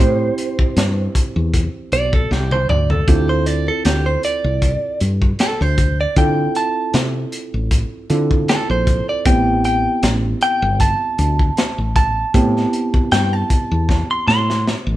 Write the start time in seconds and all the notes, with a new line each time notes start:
Already playing: C5
0.00 A2 C4 E4 G4 C5
0.38 closed hi-hat
0.59 kick
0.77 G2, snare, closed hi-hat
1.15 kick, closed hi-hat
1.36 E2
1.54 kick, closed hi-hat
1.92 B1 D5, closed hi-hat
2.13 A4, kick
2.31 C2 G4, snare
2.51 C5, high tom
2.69 D2 D5, mid tom
2.90 A4, floor tom
3.08 D2 C4 E4 F4 G4 A4, kick, closed hi-hat
3.29 C5
3.46 D5, closed hi-hat
3.68 A4
3.85 D2 G4, snare, closed hi-hat
4.06 C5
4.23 D5, closed hi-hat
4.44 C2
4.62 kick, closed hi-hat
5.01 G2, closed hi-hat
5.22 kick
5.39 A4, snare, closed hi-hat
5.61 D2 C5
5.78 kick, closed hi-hat
6.01 D5
6.16 D3 C4 E4 F4 A4 G5, kick, closed hi-hat
6.55 A5, closed hi-hat
6.94 C3, snare, closed hi-hat
7.32 closed hi-hat
7.54 A1
7.71 kick, closed hi-hat
8.10 D3 C4 E4 F4 A4, closed hi-hat
8.31 kick
8.48 A4, snare, closed hi-hat
8.70 A#1 C5
8.87 kick, closed hi-hat
9.09 D5
9.25 A1 B3 C4 E4 G4 G5, kick, closed hi-hat
9.64 G5, closed hi-hat
10.03 A1, snare, closed hi-hat
10.41 G5, closed hi-hat
10.62 G1
10.80 A5, kick, closed hi-hat
11.18 D2, closed hi-hat
11.39 kick
11.57 snare, closed hi-hat
11.78 A1
11.96 A5, kick, closed hi-hat
12.34 A2 B3 C4 E4 G4, kick, closed hi-hat
12.57 snare
12.73 closed hi-hat
12.94 kick
13.12 G2 G5, snare, closed hi-hat
13.33 A5
13.50 kick, closed hi-hat
13.71 E2
13.89 kick, snare
14.11 C6
14.27 A2 C6, snare
14.50 snare
14.67 snare
14.87 A1